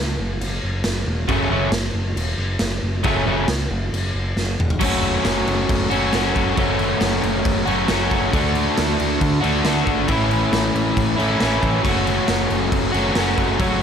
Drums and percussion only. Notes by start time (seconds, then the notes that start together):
0.41 crash
0.84 snare, crash
1.29 kick, crash
1.72 snare, crash
2.17 crash
2.59 snare, crash
3.04 kick, crash
3.48 snare, crash
3.94 crash
4.37 snare
4.60 mid tom
4.70 floor tom
4.81 kick, crash
5.02 crash
5.25 snare, crash
5.47 crash
5.69 kick, crash
5.91 crash
6.13 snare, crash
6.36 kick, crash
6.57 kick, crash
6.79 crash
7.01 snare, crash
7.23 crash
7.45 kick, crash
7.67 crash
7.88 snare, crash
8.11 kick, crash
8.33 kick, crash
8.55 crash
8.78 snare, crash
9.00 crash
9.21 kick, crash
9.44 crash
9.65 snare, crash
9.87 kick, crash
10.08 kick, crash
10.31 crash
10.53 snare, crash
10.75 crash
10.97 kick, crash
11.19 crash
11.40 snare, crash
11.63 kick, crash
11.85 kick, crash
12.07 crash
12.28 snare, crash
12.50 crash
12.72 kick, crash
12.94 crash
13.15 snare, crash
13.38 kick, crash
13.59 kick, crash